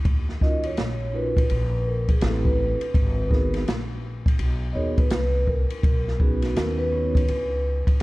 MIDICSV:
0, 0, Header, 1, 6, 480
1, 0, Start_track
1, 0, Key_signature, -6, "minor"
1, 0, Tempo, 722892
1, 35, Time_signature, 4, 2, 24, 8
1, 5328, End_track
2, 0, Start_track
2, 0, Title_t, "Vibraphone"
2, 0, Program_c, 0, 11
2, 282, Note_on_c, 0, 75, 92
2, 419, Note_off_c, 0, 75, 0
2, 436, Note_on_c, 0, 73, 87
2, 768, Note_on_c, 0, 71, 90
2, 769, Note_off_c, 0, 73, 0
2, 1244, Note_on_c, 0, 70, 80
2, 1255, Note_off_c, 0, 71, 0
2, 1381, Note_off_c, 0, 70, 0
2, 1403, Note_on_c, 0, 68, 77
2, 1485, Note_off_c, 0, 68, 0
2, 1492, Note_on_c, 0, 69, 77
2, 1637, Note_on_c, 0, 71, 85
2, 1639, Note_off_c, 0, 69, 0
2, 2325, Note_off_c, 0, 71, 0
2, 3140, Note_on_c, 0, 75, 73
2, 3155, Note_on_c, 0, 73, 101
2, 3158, Note_off_c, 0, 75, 0
2, 3311, Note_off_c, 0, 73, 0
2, 3313, Note_on_c, 0, 71, 99
2, 3631, Note_on_c, 0, 70, 87
2, 3648, Note_off_c, 0, 71, 0
2, 4086, Note_off_c, 0, 70, 0
2, 4122, Note_on_c, 0, 68, 85
2, 4189, Note_off_c, 0, 68, 0
2, 4269, Note_on_c, 0, 66, 81
2, 4350, Note_off_c, 0, 66, 0
2, 4355, Note_on_c, 0, 70, 86
2, 4423, Note_off_c, 0, 70, 0
2, 4505, Note_on_c, 0, 71, 90
2, 5199, Note_off_c, 0, 71, 0
2, 5328, End_track
3, 0, Start_track
3, 0, Title_t, "Vibraphone"
3, 0, Program_c, 1, 11
3, 269, Note_on_c, 1, 61, 66
3, 274, Note_on_c, 1, 63, 60
3, 280, Note_on_c, 1, 65, 58
3, 282, Note_on_c, 1, 66, 60
3, 286, Note_on_c, 1, 70, 71
3, 459, Note_off_c, 1, 61, 0
3, 461, Note_off_c, 1, 63, 0
3, 464, Note_off_c, 1, 65, 0
3, 465, Note_off_c, 1, 66, 0
3, 467, Note_off_c, 1, 70, 0
3, 746, Note_on_c, 1, 61, 63
3, 752, Note_on_c, 1, 63, 56
3, 753, Note_on_c, 1, 65, 57
3, 758, Note_on_c, 1, 66, 53
3, 761, Note_on_c, 1, 70, 69
3, 937, Note_off_c, 1, 61, 0
3, 940, Note_off_c, 1, 63, 0
3, 940, Note_off_c, 1, 65, 0
3, 943, Note_off_c, 1, 66, 0
3, 945, Note_off_c, 1, 70, 0
3, 1465, Note_on_c, 1, 60, 70
3, 1466, Note_on_c, 1, 64, 65
3, 1473, Note_on_c, 1, 67, 66
3, 1474, Note_on_c, 1, 69, 67
3, 1480, Note_on_c, 1, 71, 77
3, 1831, Note_off_c, 1, 60, 0
3, 1832, Note_off_c, 1, 64, 0
3, 1835, Note_off_c, 1, 67, 0
3, 1836, Note_off_c, 1, 69, 0
3, 1839, Note_off_c, 1, 71, 0
3, 2182, Note_on_c, 1, 59, 75
3, 2186, Note_on_c, 1, 63, 70
3, 2189, Note_on_c, 1, 66, 75
3, 2193, Note_on_c, 1, 68, 65
3, 2197, Note_on_c, 1, 70, 86
3, 2375, Note_off_c, 1, 59, 0
3, 2377, Note_off_c, 1, 63, 0
3, 2379, Note_off_c, 1, 66, 0
3, 2380, Note_off_c, 1, 68, 0
3, 2383, Note_off_c, 1, 70, 0
3, 3147, Note_on_c, 1, 59, 72
3, 3152, Note_on_c, 1, 63, 63
3, 3154, Note_on_c, 1, 66, 70
3, 3161, Note_on_c, 1, 68, 70
3, 3164, Note_on_c, 1, 70, 80
3, 3338, Note_off_c, 1, 59, 0
3, 3340, Note_off_c, 1, 63, 0
3, 3341, Note_off_c, 1, 66, 0
3, 3345, Note_off_c, 1, 68, 0
3, 3346, Note_off_c, 1, 70, 0
3, 4104, Note_on_c, 1, 59, 69
3, 4108, Note_on_c, 1, 61, 66
3, 4113, Note_on_c, 1, 63, 59
3, 4118, Note_on_c, 1, 66, 63
3, 4121, Note_on_c, 1, 71, 71
3, 4577, Note_off_c, 1, 59, 0
3, 4580, Note_off_c, 1, 61, 0
3, 4585, Note_on_c, 1, 59, 66
3, 4587, Note_off_c, 1, 63, 0
3, 4588, Note_on_c, 1, 61, 64
3, 4589, Note_off_c, 1, 66, 0
3, 4595, Note_on_c, 1, 63, 59
3, 4597, Note_on_c, 1, 66, 59
3, 4600, Note_on_c, 1, 73, 72
3, 4777, Note_off_c, 1, 59, 0
3, 4778, Note_off_c, 1, 61, 0
3, 4781, Note_off_c, 1, 63, 0
3, 4783, Note_off_c, 1, 66, 0
3, 4784, Note_off_c, 1, 73, 0
3, 4802, Note_off_c, 1, 71, 0
3, 5328, End_track
4, 0, Start_track
4, 0, Title_t, "Upright bass"
4, 0, Program_c, 2, 32
4, 36, Note_on_c, 2, 39, 88
4, 491, Note_off_c, 2, 39, 0
4, 516, Note_on_c, 2, 34, 86
4, 971, Note_off_c, 2, 34, 0
4, 999, Note_on_c, 2, 34, 98
4, 1453, Note_off_c, 2, 34, 0
4, 1476, Note_on_c, 2, 33, 105
4, 1847, Note_off_c, 2, 33, 0
4, 1957, Note_on_c, 2, 32, 105
4, 2412, Note_off_c, 2, 32, 0
4, 2437, Note_on_c, 2, 34, 82
4, 2892, Note_off_c, 2, 34, 0
4, 2915, Note_on_c, 2, 35, 97
4, 3143, Note_off_c, 2, 35, 0
4, 3155, Note_on_c, 2, 39, 84
4, 3383, Note_off_c, 2, 39, 0
4, 3396, Note_on_c, 2, 36, 102
4, 3767, Note_off_c, 2, 36, 0
4, 3873, Note_on_c, 2, 35, 98
4, 4330, Note_off_c, 2, 35, 0
4, 4355, Note_on_c, 2, 39, 91
4, 4811, Note_off_c, 2, 39, 0
4, 4839, Note_on_c, 2, 37, 98
4, 5208, Note_off_c, 2, 37, 0
4, 5328, End_track
5, 0, Start_track
5, 0, Title_t, "Muted upright bass strokes"
5, 1867, Note_on_c, 9, 29, 48
5, 1933, Note_off_c, 9, 29, 0
5, 3789, Note_on_c, 9, 29, 46
5, 3856, Note_off_c, 9, 29, 0
5, 5229, Note_on_c, 9, 29, 43
5, 5295, Note_off_c, 9, 29, 0
5, 5328, End_track
6, 0, Start_track
6, 0, Title_t, "Drums"
6, 33, Note_on_c, 9, 51, 69
6, 34, Note_on_c, 9, 36, 112
6, 100, Note_off_c, 9, 51, 0
6, 101, Note_off_c, 9, 36, 0
6, 193, Note_on_c, 9, 38, 35
6, 259, Note_off_c, 9, 38, 0
6, 275, Note_on_c, 9, 36, 86
6, 281, Note_on_c, 9, 38, 32
6, 341, Note_off_c, 9, 36, 0
6, 347, Note_off_c, 9, 38, 0
6, 421, Note_on_c, 9, 51, 57
6, 488, Note_off_c, 9, 51, 0
6, 513, Note_on_c, 9, 44, 47
6, 513, Note_on_c, 9, 51, 65
6, 518, Note_on_c, 9, 38, 92
6, 579, Note_off_c, 9, 44, 0
6, 579, Note_off_c, 9, 51, 0
6, 585, Note_off_c, 9, 38, 0
6, 908, Note_on_c, 9, 36, 97
6, 917, Note_on_c, 9, 51, 73
6, 974, Note_off_c, 9, 36, 0
6, 983, Note_off_c, 9, 51, 0
6, 993, Note_on_c, 9, 51, 71
6, 1059, Note_off_c, 9, 51, 0
6, 1385, Note_on_c, 9, 51, 60
6, 1386, Note_on_c, 9, 36, 86
6, 1451, Note_off_c, 9, 51, 0
6, 1453, Note_off_c, 9, 36, 0
6, 1469, Note_on_c, 9, 44, 56
6, 1469, Note_on_c, 9, 51, 78
6, 1476, Note_on_c, 9, 38, 106
6, 1536, Note_off_c, 9, 44, 0
6, 1536, Note_off_c, 9, 51, 0
6, 1543, Note_off_c, 9, 38, 0
6, 1628, Note_on_c, 9, 36, 84
6, 1695, Note_off_c, 9, 36, 0
6, 1866, Note_on_c, 9, 51, 64
6, 1932, Note_off_c, 9, 51, 0
6, 1955, Note_on_c, 9, 36, 114
6, 1957, Note_on_c, 9, 51, 68
6, 2021, Note_off_c, 9, 36, 0
6, 2024, Note_off_c, 9, 51, 0
6, 2196, Note_on_c, 9, 36, 85
6, 2208, Note_on_c, 9, 38, 36
6, 2263, Note_off_c, 9, 36, 0
6, 2274, Note_off_c, 9, 38, 0
6, 2349, Note_on_c, 9, 51, 58
6, 2357, Note_on_c, 9, 38, 37
6, 2415, Note_off_c, 9, 51, 0
6, 2423, Note_off_c, 9, 38, 0
6, 2442, Note_on_c, 9, 44, 45
6, 2442, Note_on_c, 9, 51, 64
6, 2447, Note_on_c, 9, 38, 100
6, 2508, Note_off_c, 9, 44, 0
6, 2508, Note_off_c, 9, 51, 0
6, 2514, Note_off_c, 9, 38, 0
6, 2828, Note_on_c, 9, 36, 99
6, 2841, Note_on_c, 9, 51, 73
6, 2895, Note_off_c, 9, 36, 0
6, 2908, Note_off_c, 9, 51, 0
6, 2914, Note_on_c, 9, 51, 75
6, 2981, Note_off_c, 9, 51, 0
6, 3304, Note_on_c, 9, 51, 61
6, 3305, Note_on_c, 9, 36, 94
6, 3371, Note_off_c, 9, 51, 0
6, 3372, Note_off_c, 9, 36, 0
6, 3389, Note_on_c, 9, 44, 55
6, 3389, Note_on_c, 9, 51, 82
6, 3395, Note_on_c, 9, 38, 117
6, 3455, Note_off_c, 9, 44, 0
6, 3455, Note_off_c, 9, 51, 0
6, 3462, Note_off_c, 9, 38, 0
6, 3635, Note_on_c, 9, 36, 75
6, 3701, Note_off_c, 9, 36, 0
6, 3787, Note_on_c, 9, 51, 64
6, 3853, Note_off_c, 9, 51, 0
6, 3874, Note_on_c, 9, 36, 111
6, 3877, Note_on_c, 9, 51, 68
6, 3940, Note_off_c, 9, 36, 0
6, 3944, Note_off_c, 9, 51, 0
6, 4035, Note_on_c, 9, 38, 40
6, 4101, Note_off_c, 9, 38, 0
6, 4116, Note_on_c, 9, 36, 91
6, 4182, Note_off_c, 9, 36, 0
6, 4264, Note_on_c, 9, 51, 64
6, 4272, Note_on_c, 9, 38, 37
6, 4331, Note_off_c, 9, 51, 0
6, 4339, Note_off_c, 9, 38, 0
6, 4359, Note_on_c, 9, 44, 49
6, 4359, Note_on_c, 9, 51, 72
6, 4364, Note_on_c, 9, 38, 97
6, 4425, Note_off_c, 9, 44, 0
6, 4425, Note_off_c, 9, 51, 0
6, 4431, Note_off_c, 9, 38, 0
6, 4748, Note_on_c, 9, 36, 96
6, 4759, Note_on_c, 9, 51, 78
6, 4814, Note_off_c, 9, 36, 0
6, 4826, Note_off_c, 9, 51, 0
6, 4836, Note_on_c, 9, 51, 68
6, 4903, Note_off_c, 9, 51, 0
6, 5226, Note_on_c, 9, 36, 93
6, 5229, Note_on_c, 9, 51, 58
6, 5293, Note_off_c, 9, 36, 0
6, 5296, Note_off_c, 9, 51, 0
6, 5328, End_track
0, 0, End_of_file